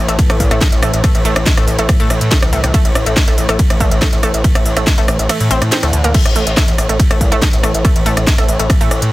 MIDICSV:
0, 0, Header, 1, 5, 480
1, 0, Start_track
1, 0, Tempo, 425532
1, 1171, Time_signature, 4, 2, 24, 8
1, 10293, End_track
2, 0, Start_track
2, 0, Title_t, "Synth arpeggio sound"
2, 0, Program_c, 0, 84
2, 95, Note_on_c, 0, 57, 75
2, 181, Note_off_c, 0, 57, 0
2, 335, Note_on_c, 0, 57, 78
2, 392, Note_off_c, 0, 57, 0
2, 576, Note_on_c, 0, 57, 105
2, 610, Note_off_c, 0, 57, 0
2, 931, Note_on_c, 0, 57, 78
2, 1023, Note_off_c, 0, 57, 0
2, 1171, Note_on_c, 0, 57, 83
2, 1232, Note_off_c, 0, 57, 0
2, 1411, Note_on_c, 0, 57, 100
2, 1448, Note_off_c, 0, 57, 0
2, 1775, Note_on_c, 0, 57, 77
2, 1861, Note_off_c, 0, 57, 0
2, 2015, Note_on_c, 0, 57, 77
2, 2072, Note_off_c, 0, 57, 0
2, 2255, Note_on_c, 0, 57, 103
2, 2289, Note_off_c, 0, 57, 0
2, 2610, Note_on_c, 0, 57, 84
2, 2702, Note_off_c, 0, 57, 0
2, 2851, Note_on_c, 0, 57, 78
2, 2912, Note_off_c, 0, 57, 0
2, 3091, Note_on_c, 0, 57, 101
2, 3128, Note_off_c, 0, 57, 0
2, 3456, Note_on_c, 0, 57, 79
2, 3541, Note_off_c, 0, 57, 0
2, 3695, Note_on_c, 0, 57, 80
2, 3753, Note_off_c, 0, 57, 0
2, 3935, Note_on_c, 0, 57, 98
2, 3969, Note_off_c, 0, 57, 0
2, 4291, Note_on_c, 0, 57, 76
2, 4383, Note_off_c, 0, 57, 0
2, 4532, Note_on_c, 0, 57, 82
2, 4593, Note_off_c, 0, 57, 0
2, 4771, Note_on_c, 0, 57, 99
2, 4808, Note_off_c, 0, 57, 0
2, 5135, Note_on_c, 0, 57, 79
2, 5221, Note_off_c, 0, 57, 0
2, 5375, Note_on_c, 0, 57, 76
2, 5432, Note_off_c, 0, 57, 0
2, 5616, Note_on_c, 0, 57, 102
2, 5650, Note_off_c, 0, 57, 0
2, 5972, Note_on_c, 0, 57, 83
2, 6063, Note_off_c, 0, 57, 0
2, 6211, Note_on_c, 0, 60, 99
2, 6303, Note_off_c, 0, 60, 0
2, 6451, Note_on_c, 0, 60, 99
2, 6543, Note_off_c, 0, 60, 0
2, 6575, Note_on_c, 0, 57, 78
2, 6610, Note_off_c, 0, 57, 0
2, 6815, Note_on_c, 0, 58, 109
2, 6872, Note_off_c, 0, 58, 0
2, 6930, Note_on_c, 0, 57, 82
2, 7023, Note_off_c, 0, 57, 0
2, 7170, Note_on_c, 0, 57, 78
2, 7232, Note_off_c, 0, 57, 0
2, 7410, Note_on_c, 0, 57, 106
2, 7448, Note_off_c, 0, 57, 0
2, 7774, Note_on_c, 0, 57, 74
2, 7860, Note_off_c, 0, 57, 0
2, 8014, Note_on_c, 0, 57, 79
2, 8072, Note_off_c, 0, 57, 0
2, 8254, Note_on_c, 0, 57, 103
2, 8289, Note_off_c, 0, 57, 0
2, 8610, Note_on_c, 0, 57, 78
2, 8702, Note_off_c, 0, 57, 0
2, 8849, Note_on_c, 0, 57, 83
2, 8911, Note_off_c, 0, 57, 0
2, 9090, Note_on_c, 0, 57, 104
2, 9127, Note_off_c, 0, 57, 0
2, 9455, Note_on_c, 0, 57, 80
2, 9541, Note_off_c, 0, 57, 0
2, 9694, Note_on_c, 0, 57, 74
2, 9752, Note_off_c, 0, 57, 0
2, 9935, Note_on_c, 0, 57, 103
2, 9969, Note_off_c, 0, 57, 0
2, 10293, End_track
3, 0, Start_track
3, 0, Title_t, "Synth drone"
3, 0, Program_c, 1, 95
3, 0, Note_on_c, 1, 45, 76
3, 0, Note_on_c, 1, 52, 78
3, 6918, Note_off_c, 1, 45, 0
3, 6918, Note_off_c, 1, 52, 0
3, 6932, Note_on_c, 1, 45, 76
3, 6932, Note_on_c, 1, 52, 76
3, 10293, Note_off_c, 1, 45, 0
3, 10293, Note_off_c, 1, 52, 0
3, 10293, End_track
4, 0, Start_track
4, 0, Title_t, "Analog synth bass"
4, 0, Program_c, 2, 38
4, 96, Note_on_c, 2, 33, 92
4, 194, Note_off_c, 2, 33, 0
4, 335, Note_on_c, 2, 33, 87
4, 433, Note_off_c, 2, 33, 0
4, 451, Note_on_c, 2, 34, 98
4, 556, Note_off_c, 2, 34, 0
4, 574, Note_on_c, 2, 33, 93
4, 673, Note_off_c, 2, 33, 0
4, 814, Note_on_c, 2, 33, 86
4, 913, Note_off_c, 2, 33, 0
4, 930, Note_on_c, 2, 33, 98
4, 1036, Note_off_c, 2, 33, 0
4, 1055, Note_on_c, 2, 33, 96
4, 1153, Note_off_c, 2, 33, 0
4, 1294, Note_on_c, 2, 33, 83
4, 1393, Note_off_c, 2, 33, 0
4, 1410, Note_on_c, 2, 33, 105
4, 1515, Note_off_c, 2, 33, 0
4, 1533, Note_on_c, 2, 33, 93
4, 1632, Note_off_c, 2, 33, 0
4, 1773, Note_on_c, 2, 33, 90
4, 1872, Note_off_c, 2, 33, 0
4, 1889, Note_on_c, 2, 33, 103
4, 1995, Note_off_c, 2, 33, 0
4, 2013, Note_on_c, 2, 33, 93
4, 2113, Note_off_c, 2, 33, 0
4, 2253, Note_on_c, 2, 45, 88
4, 2352, Note_off_c, 2, 45, 0
4, 2369, Note_on_c, 2, 33, 98
4, 2475, Note_off_c, 2, 33, 0
4, 2492, Note_on_c, 2, 45, 92
4, 2592, Note_off_c, 2, 45, 0
4, 2733, Note_on_c, 2, 36, 87
4, 2832, Note_off_c, 2, 36, 0
4, 2849, Note_on_c, 2, 36, 98
4, 2955, Note_off_c, 2, 36, 0
4, 2974, Note_on_c, 2, 36, 95
4, 3073, Note_off_c, 2, 36, 0
4, 3213, Note_on_c, 2, 33, 84
4, 3312, Note_off_c, 2, 33, 0
4, 3329, Note_on_c, 2, 33, 102
4, 3435, Note_off_c, 2, 33, 0
4, 3454, Note_on_c, 2, 33, 96
4, 3553, Note_off_c, 2, 33, 0
4, 3694, Note_on_c, 2, 33, 91
4, 3793, Note_off_c, 2, 33, 0
4, 3810, Note_on_c, 2, 33, 103
4, 3916, Note_off_c, 2, 33, 0
4, 3935, Note_on_c, 2, 33, 94
4, 4033, Note_off_c, 2, 33, 0
4, 4175, Note_on_c, 2, 33, 88
4, 4273, Note_off_c, 2, 33, 0
4, 4291, Note_on_c, 2, 34, 102
4, 4396, Note_off_c, 2, 34, 0
4, 4415, Note_on_c, 2, 33, 93
4, 4513, Note_off_c, 2, 33, 0
4, 4655, Note_on_c, 2, 33, 88
4, 4754, Note_off_c, 2, 33, 0
4, 4771, Note_on_c, 2, 33, 99
4, 4876, Note_off_c, 2, 33, 0
4, 4895, Note_on_c, 2, 33, 94
4, 4994, Note_off_c, 2, 33, 0
4, 5135, Note_on_c, 2, 33, 85
4, 5233, Note_off_c, 2, 33, 0
4, 5251, Note_on_c, 2, 33, 103
4, 5356, Note_off_c, 2, 33, 0
4, 5374, Note_on_c, 2, 33, 96
4, 5473, Note_off_c, 2, 33, 0
4, 5614, Note_on_c, 2, 33, 91
4, 5713, Note_off_c, 2, 33, 0
4, 5731, Note_on_c, 2, 33, 101
4, 5836, Note_off_c, 2, 33, 0
4, 5856, Note_on_c, 2, 33, 93
4, 5954, Note_off_c, 2, 33, 0
4, 6096, Note_on_c, 2, 45, 89
4, 6194, Note_off_c, 2, 45, 0
4, 6211, Note_on_c, 2, 33, 100
4, 6316, Note_off_c, 2, 33, 0
4, 6335, Note_on_c, 2, 45, 95
4, 6433, Note_off_c, 2, 45, 0
4, 6575, Note_on_c, 2, 38, 85
4, 6673, Note_off_c, 2, 38, 0
4, 6691, Note_on_c, 2, 38, 100
4, 6796, Note_off_c, 2, 38, 0
4, 6815, Note_on_c, 2, 38, 93
4, 6913, Note_off_c, 2, 38, 0
4, 7055, Note_on_c, 2, 33, 86
4, 7153, Note_off_c, 2, 33, 0
4, 7170, Note_on_c, 2, 33, 107
4, 7276, Note_off_c, 2, 33, 0
4, 7294, Note_on_c, 2, 33, 95
4, 7393, Note_off_c, 2, 33, 0
4, 7535, Note_on_c, 2, 33, 89
4, 7634, Note_off_c, 2, 33, 0
4, 7651, Note_on_c, 2, 33, 102
4, 7756, Note_off_c, 2, 33, 0
4, 7775, Note_on_c, 2, 33, 91
4, 7873, Note_off_c, 2, 33, 0
4, 8016, Note_on_c, 2, 33, 89
4, 8114, Note_off_c, 2, 33, 0
4, 8130, Note_on_c, 2, 34, 100
4, 8236, Note_off_c, 2, 34, 0
4, 8255, Note_on_c, 2, 33, 93
4, 8353, Note_off_c, 2, 33, 0
4, 8495, Note_on_c, 2, 33, 86
4, 8593, Note_off_c, 2, 33, 0
4, 8612, Note_on_c, 2, 33, 101
4, 8717, Note_off_c, 2, 33, 0
4, 8736, Note_on_c, 2, 33, 94
4, 8834, Note_off_c, 2, 33, 0
4, 8976, Note_on_c, 2, 33, 84
4, 9074, Note_off_c, 2, 33, 0
4, 9091, Note_on_c, 2, 33, 103
4, 9196, Note_off_c, 2, 33, 0
4, 9216, Note_on_c, 2, 33, 96
4, 9314, Note_off_c, 2, 33, 0
4, 9455, Note_on_c, 2, 33, 90
4, 9553, Note_off_c, 2, 33, 0
4, 9571, Note_on_c, 2, 33, 104
4, 9676, Note_off_c, 2, 33, 0
4, 9695, Note_on_c, 2, 33, 94
4, 9793, Note_off_c, 2, 33, 0
4, 9936, Note_on_c, 2, 45, 88
4, 10034, Note_off_c, 2, 45, 0
4, 10052, Note_on_c, 2, 33, 103
4, 10157, Note_off_c, 2, 33, 0
4, 10175, Note_on_c, 2, 45, 93
4, 10273, Note_off_c, 2, 45, 0
4, 10293, End_track
5, 0, Start_track
5, 0, Title_t, "Drums"
5, 96, Note_on_c, 9, 42, 49
5, 209, Note_off_c, 9, 42, 0
5, 211, Note_on_c, 9, 36, 121
5, 211, Note_on_c, 9, 42, 88
5, 211, Note_on_c, 9, 51, 67
5, 324, Note_off_c, 9, 36, 0
5, 324, Note_off_c, 9, 42, 0
5, 324, Note_off_c, 9, 51, 0
5, 335, Note_on_c, 9, 37, 100
5, 335, Note_on_c, 9, 42, 50
5, 448, Note_off_c, 9, 37, 0
5, 448, Note_off_c, 9, 42, 0
5, 451, Note_on_c, 9, 36, 62
5, 451, Note_on_c, 9, 46, 107
5, 564, Note_off_c, 9, 36, 0
5, 564, Note_off_c, 9, 46, 0
5, 576, Note_on_c, 9, 37, 70
5, 576, Note_on_c, 9, 42, 49
5, 689, Note_off_c, 9, 37, 0
5, 689, Note_off_c, 9, 42, 0
5, 691, Note_on_c, 9, 36, 119
5, 691, Note_on_c, 9, 38, 116
5, 691, Note_on_c, 9, 42, 89
5, 691, Note_on_c, 9, 51, 71
5, 803, Note_off_c, 9, 36, 0
5, 804, Note_off_c, 9, 38, 0
5, 804, Note_off_c, 9, 42, 0
5, 804, Note_off_c, 9, 51, 0
5, 816, Note_on_c, 9, 42, 51
5, 928, Note_off_c, 9, 42, 0
5, 931, Note_on_c, 9, 37, 97
5, 931, Note_on_c, 9, 46, 110
5, 1043, Note_off_c, 9, 37, 0
5, 1043, Note_off_c, 9, 46, 0
5, 1055, Note_on_c, 9, 42, 53
5, 1168, Note_off_c, 9, 42, 0
5, 1171, Note_on_c, 9, 36, 117
5, 1171, Note_on_c, 9, 37, 69
5, 1171, Note_on_c, 9, 42, 89
5, 1171, Note_on_c, 9, 51, 70
5, 1283, Note_off_c, 9, 37, 0
5, 1283, Note_off_c, 9, 42, 0
5, 1283, Note_off_c, 9, 51, 0
5, 1284, Note_off_c, 9, 36, 0
5, 1295, Note_on_c, 9, 42, 51
5, 1408, Note_off_c, 9, 42, 0
5, 1410, Note_on_c, 9, 46, 101
5, 1523, Note_off_c, 9, 46, 0
5, 1534, Note_on_c, 9, 37, 96
5, 1534, Note_on_c, 9, 42, 51
5, 1647, Note_off_c, 9, 37, 0
5, 1647, Note_off_c, 9, 42, 0
5, 1650, Note_on_c, 9, 38, 119
5, 1650, Note_on_c, 9, 42, 90
5, 1650, Note_on_c, 9, 51, 70
5, 1651, Note_on_c, 9, 36, 117
5, 1763, Note_off_c, 9, 38, 0
5, 1763, Note_off_c, 9, 42, 0
5, 1763, Note_off_c, 9, 51, 0
5, 1764, Note_off_c, 9, 36, 0
5, 1775, Note_on_c, 9, 37, 72
5, 1775, Note_on_c, 9, 42, 52
5, 1888, Note_off_c, 9, 37, 0
5, 1888, Note_off_c, 9, 42, 0
5, 1890, Note_on_c, 9, 46, 103
5, 2003, Note_off_c, 9, 46, 0
5, 2014, Note_on_c, 9, 42, 50
5, 2127, Note_off_c, 9, 42, 0
5, 2130, Note_on_c, 9, 37, 94
5, 2130, Note_on_c, 9, 42, 88
5, 2130, Note_on_c, 9, 51, 69
5, 2131, Note_on_c, 9, 36, 119
5, 2243, Note_off_c, 9, 37, 0
5, 2243, Note_off_c, 9, 42, 0
5, 2243, Note_off_c, 9, 51, 0
5, 2244, Note_off_c, 9, 36, 0
5, 2255, Note_on_c, 9, 46, 62
5, 2368, Note_off_c, 9, 46, 0
5, 2370, Note_on_c, 9, 37, 70
5, 2370, Note_on_c, 9, 46, 104
5, 2483, Note_off_c, 9, 37, 0
5, 2483, Note_off_c, 9, 46, 0
5, 2495, Note_on_c, 9, 42, 50
5, 2607, Note_off_c, 9, 42, 0
5, 2610, Note_on_c, 9, 38, 121
5, 2610, Note_on_c, 9, 42, 90
5, 2610, Note_on_c, 9, 51, 72
5, 2611, Note_on_c, 9, 36, 113
5, 2723, Note_off_c, 9, 38, 0
5, 2723, Note_off_c, 9, 42, 0
5, 2723, Note_off_c, 9, 51, 0
5, 2724, Note_off_c, 9, 36, 0
5, 2735, Note_on_c, 9, 37, 101
5, 2735, Note_on_c, 9, 42, 51
5, 2848, Note_off_c, 9, 37, 0
5, 2848, Note_off_c, 9, 42, 0
5, 2851, Note_on_c, 9, 46, 104
5, 2964, Note_off_c, 9, 46, 0
5, 2975, Note_on_c, 9, 37, 72
5, 2975, Note_on_c, 9, 42, 51
5, 3087, Note_off_c, 9, 37, 0
5, 3087, Note_off_c, 9, 42, 0
5, 3091, Note_on_c, 9, 36, 112
5, 3091, Note_on_c, 9, 42, 91
5, 3091, Note_on_c, 9, 51, 71
5, 3204, Note_off_c, 9, 36, 0
5, 3204, Note_off_c, 9, 42, 0
5, 3204, Note_off_c, 9, 51, 0
5, 3215, Note_on_c, 9, 42, 53
5, 3328, Note_off_c, 9, 42, 0
5, 3331, Note_on_c, 9, 37, 96
5, 3331, Note_on_c, 9, 46, 104
5, 3444, Note_off_c, 9, 37, 0
5, 3444, Note_off_c, 9, 46, 0
5, 3455, Note_on_c, 9, 42, 53
5, 3568, Note_off_c, 9, 42, 0
5, 3571, Note_on_c, 9, 36, 115
5, 3571, Note_on_c, 9, 37, 68
5, 3571, Note_on_c, 9, 38, 125
5, 3571, Note_on_c, 9, 42, 91
5, 3571, Note_on_c, 9, 51, 73
5, 3684, Note_off_c, 9, 36, 0
5, 3684, Note_off_c, 9, 37, 0
5, 3684, Note_off_c, 9, 38, 0
5, 3684, Note_off_c, 9, 42, 0
5, 3684, Note_off_c, 9, 51, 0
5, 3695, Note_on_c, 9, 42, 53
5, 3808, Note_off_c, 9, 42, 0
5, 3811, Note_on_c, 9, 46, 103
5, 3924, Note_off_c, 9, 46, 0
5, 3935, Note_on_c, 9, 37, 97
5, 3935, Note_on_c, 9, 42, 51
5, 4047, Note_off_c, 9, 37, 0
5, 4047, Note_off_c, 9, 42, 0
5, 4051, Note_on_c, 9, 36, 115
5, 4051, Note_on_c, 9, 42, 91
5, 4051, Note_on_c, 9, 51, 70
5, 4164, Note_off_c, 9, 36, 0
5, 4164, Note_off_c, 9, 42, 0
5, 4164, Note_off_c, 9, 51, 0
5, 4176, Note_on_c, 9, 37, 72
5, 4176, Note_on_c, 9, 42, 53
5, 4288, Note_off_c, 9, 37, 0
5, 4288, Note_off_c, 9, 42, 0
5, 4291, Note_on_c, 9, 36, 58
5, 4291, Note_on_c, 9, 46, 102
5, 4404, Note_off_c, 9, 36, 0
5, 4404, Note_off_c, 9, 46, 0
5, 4415, Note_on_c, 9, 42, 51
5, 4528, Note_off_c, 9, 42, 0
5, 4531, Note_on_c, 9, 36, 113
5, 4531, Note_on_c, 9, 37, 96
5, 4531, Note_on_c, 9, 38, 127
5, 4531, Note_on_c, 9, 42, 92
5, 4531, Note_on_c, 9, 51, 71
5, 4644, Note_off_c, 9, 36, 0
5, 4644, Note_off_c, 9, 37, 0
5, 4644, Note_off_c, 9, 38, 0
5, 4644, Note_off_c, 9, 42, 0
5, 4644, Note_off_c, 9, 51, 0
5, 4655, Note_on_c, 9, 42, 53
5, 4768, Note_off_c, 9, 42, 0
5, 4771, Note_on_c, 9, 37, 69
5, 4771, Note_on_c, 9, 46, 104
5, 4884, Note_off_c, 9, 37, 0
5, 4884, Note_off_c, 9, 46, 0
5, 4895, Note_on_c, 9, 42, 55
5, 5008, Note_off_c, 9, 42, 0
5, 5011, Note_on_c, 9, 36, 117
5, 5012, Note_on_c, 9, 42, 93
5, 5012, Note_on_c, 9, 51, 68
5, 5124, Note_off_c, 9, 36, 0
5, 5125, Note_off_c, 9, 42, 0
5, 5125, Note_off_c, 9, 51, 0
5, 5135, Note_on_c, 9, 37, 94
5, 5135, Note_on_c, 9, 42, 55
5, 5248, Note_off_c, 9, 37, 0
5, 5248, Note_off_c, 9, 42, 0
5, 5251, Note_on_c, 9, 46, 101
5, 5364, Note_off_c, 9, 46, 0
5, 5375, Note_on_c, 9, 37, 66
5, 5375, Note_on_c, 9, 42, 54
5, 5488, Note_off_c, 9, 37, 0
5, 5488, Note_off_c, 9, 42, 0
5, 5491, Note_on_c, 9, 36, 115
5, 5492, Note_on_c, 9, 38, 125
5, 5492, Note_on_c, 9, 42, 94
5, 5492, Note_on_c, 9, 51, 68
5, 5604, Note_off_c, 9, 36, 0
5, 5605, Note_off_c, 9, 38, 0
5, 5605, Note_off_c, 9, 42, 0
5, 5605, Note_off_c, 9, 51, 0
5, 5616, Note_on_c, 9, 42, 56
5, 5729, Note_off_c, 9, 42, 0
5, 5732, Note_on_c, 9, 37, 93
5, 5732, Note_on_c, 9, 46, 101
5, 5845, Note_off_c, 9, 37, 0
5, 5845, Note_off_c, 9, 46, 0
5, 5856, Note_on_c, 9, 42, 55
5, 5969, Note_off_c, 9, 42, 0
5, 5972, Note_on_c, 9, 37, 67
5, 5972, Note_on_c, 9, 42, 96
5, 5972, Note_on_c, 9, 51, 70
5, 6084, Note_off_c, 9, 37, 0
5, 6084, Note_off_c, 9, 42, 0
5, 6084, Note_off_c, 9, 51, 0
5, 6096, Note_on_c, 9, 46, 61
5, 6209, Note_off_c, 9, 46, 0
5, 6212, Note_on_c, 9, 46, 105
5, 6324, Note_off_c, 9, 46, 0
5, 6336, Note_on_c, 9, 37, 90
5, 6336, Note_on_c, 9, 42, 52
5, 6449, Note_off_c, 9, 37, 0
5, 6449, Note_off_c, 9, 42, 0
5, 6452, Note_on_c, 9, 38, 126
5, 6452, Note_on_c, 9, 42, 97
5, 6452, Note_on_c, 9, 51, 73
5, 6565, Note_off_c, 9, 38, 0
5, 6565, Note_off_c, 9, 42, 0
5, 6565, Note_off_c, 9, 51, 0
5, 6576, Note_on_c, 9, 37, 66
5, 6576, Note_on_c, 9, 42, 54
5, 6689, Note_off_c, 9, 37, 0
5, 6689, Note_off_c, 9, 42, 0
5, 6691, Note_on_c, 9, 46, 106
5, 6804, Note_off_c, 9, 46, 0
5, 6815, Note_on_c, 9, 42, 56
5, 6928, Note_off_c, 9, 42, 0
5, 6931, Note_on_c, 9, 36, 121
5, 6931, Note_on_c, 9, 42, 100
5, 6931, Note_on_c, 9, 49, 75
5, 6931, Note_on_c, 9, 51, 67
5, 7044, Note_off_c, 9, 36, 0
5, 7044, Note_off_c, 9, 42, 0
5, 7044, Note_off_c, 9, 49, 0
5, 7044, Note_off_c, 9, 51, 0
5, 7055, Note_on_c, 9, 37, 65
5, 7055, Note_on_c, 9, 42, 57
5, 7168, Note_off_c, 9, 37, 0
5, 7168, Note_off_c, 9, 42, 0
5, 7171, Note_on_c, 9, 46, 109
5, 7284, Note_off_c, 9, 46, 0
5, 7295, Note_on_c, 9, 42, 56
5, 7408, Note_off_c, 9, 42, 0
5, 7411, Note_on_c, 9, 36, 119
5, 7411, Note_on_c, 9, 37, 89
5, 7411, Note_on_c, 9, 38, 123
5, 7411, Note_on_c, 9, 42, 97
5, 7411, Note_on_c, 9, 51, 67
5, 7524, Note_off_c, 9, 36, 0
5, 7524, Note_off_c, 9, 37, 0
5, 7524, Note_off_c, 9, 38, 0
5, 7524, Note_off_c, 9, 42, 0
5, 7524, Note_off_c, 9, 51, 0
5, 7535, Note_on_c, 9, 42, 57
5, 7648, Note_off_c, 9, 42, 0
5, 7651, Note_on_c, 9, 37, 67
5, 7651, Note_on_c, 9, 46, 109
5, 7764, Note_off_c, 9, 37, 0
5, 7764, Note_off_c, 9, 46, 0
5, 7775, Note_on_c, 9, 42, 55
5, 7888, Note_off_c, 9, 42, 0
5, 7891, Note_on_c, 9, 36, 121
5, 7891, Note_on_c, 9, 42, 96
5, 7891, Note_on_c, 9, 51, 69
5, 8003, Note_off_c, 9, 36, 0
5, 8004, Note_off_c, 9, 42, 0
5, 8004, Note_off_c, 9, 51, 0
5, 8016, Note_on_c, 9, 37, 90
5, 8016, Note_on_c, 9, 42, 58
5, 8129, Note_off_c, 9, 37, 0
5, 8129, Note_off_c, 9, 42, 0
5, 8131, Note_on_c, 9, 36, 63
5, 8132, Note_on_c, 9, 46, 109
5, 8243, Note_off_c, 9, 36, 0
5, 8244, Note_off_c, 9, 46, 0
5, 8256, Note_on_c, 9, 37, 62
5, 8256, Note_on_c, 9, 42, 56
5, 8369, Note_off_c, 9, 37, 0
5, 8369, Note_off_c, 9, 42, 0
5, 8371, Note_on_c, 9, 36, 116
5, 8372, Note_on_c, 9, 38, 127
5, 8372, Note_on_c, 9, 42, 101
5, 8372, Note_on_c, 9, 51, 68
5, 8484, Note_off_c, 9, 36, 0
5, 8485, Note_off_c, 9, 38, 0
5, 8485, Note_off_c, 9, 42, 0
5, 8485, Note_off_c, 9, 51, 0
5, 8496, Note_on_c, 9, 42, 56
5, 8609, Note_off_c, 9, 42, 0
5, 8612, Note_on_c, 9, 37, 91
5, 8612, Note_on_c, 9, 46, 107
5, 8725, Note_off_c, 9, 37, 0
5, 8725, Note_off_c, 9, 46, 0
5, 8736, Note_on_c, 9, 42, 58
5, 8849, Note_off_c, 9, 42, 0
5, 8851, Note_on_c, 9, 36, 127
5, 8852, Note_on_c, 9, 37, 62
5, 8852, Note_on_c, 9, 42, 97
5, 8852, Note_on_c, 9, 51, 65
5, 8964, Note_off_c, 9, 36, 0
5, 8965, Note_off_c, 9, 37, 0
5, 8965, Note_off_c, 9, 42, 0
5, 8965, Note_off_c, 9, 51, 0
5, 8976, Note_on_c, 9, 42, 58
5, 9089, Note_off_c, 9, 42, 0
5, 9092, Note_on_c, 9, 46, 112
5, 9204, Note_off_c, 9, 46, 0
5, 9216, Note_on_c, 9, 37, 89
5, 9216, Note_on_c, 9, 42, 56
5, 9329, Note_off_c, 9, 37, 0
5, 9329, Note_off_c, 9, 42, 0
5, 9331, Note_on_c, 9, 36, 123
5, 9332, Note_on_c, 9, 38, 120
5, 9332, Note_on_c, 9, 42, 98
5, 9332, Note_on_c, 9, 51, 66
5, 9444, Note_off_c, 9, 36, 0
5, 9444, Note_off_c, 9, 38, 0
5, 9444, Note_off_c, 9, 42, 0
5, 9444, Note_off_c, 9, 51, 0
5, 9456, Note_on_c, 9, 37, 66
5, 9456, Note_on_c, 9, 42, 57
5, 9568, Note_off_c, 9, 37, 0
5, 9568, Note_off_c, 9, 42, 0
5, 9571, Note_on_c, 9, 46, 110
5, 9684, Note_off_c, 9, 46, 0
5, 9695, Note_on_c, 9, 42, 55
5, 9808, Note_off_c, 9, 42, 0
5, 9811, Note_on_c, 9, 36, 127
5, 9811, Note_on_c, 9, 37, 88
5, 9811, Note_on_c, 9, 42, 97
5, 9811, Note_on_c, 9, 51, 66
5, 9923, Note_off_c, 9, 36, 0
5, 9924, Note_off_c, 9, 37, 0
5, 9924, Note_off_c, 9, 42, 0
5, 9924, Note_off_c, 9, 51, 0
5, 9936, Note_on_c, 9, 46, 65
5, 10048, Note_off_c, 9, 46, 0
5, 10051, Note_on_c, 9, 37, 67
5, 10051, Note_on_c, 9, 46, 112
5, 10164, Note_off_c, 9, 37, 0
5, 10164, Note_off_c, 9, 46, 0
5, 10176, Note_on_c, 9, 42, 56
5, 10289, Note_off_c, 9, 42, 0
5, 10293, End_track
0, 0, End_of_file